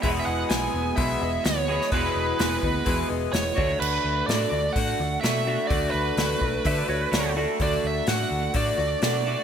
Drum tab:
CC |----------------|----------------|x---------------|----------------|
HH |o---o---o---o---|o---o---o---o---|----o---o---o---|o---o---o---o---|
SD |----o-------o--o|----o-------o---|----o-------o---|----o-------o---|
BD |o-------o-------|o-----o-o-----o-|--------o-------|o-----o-o-------|

CC |----------------|
HH |o---o---o---o---|
SD |----o-------o---|
BD |o-------o-------|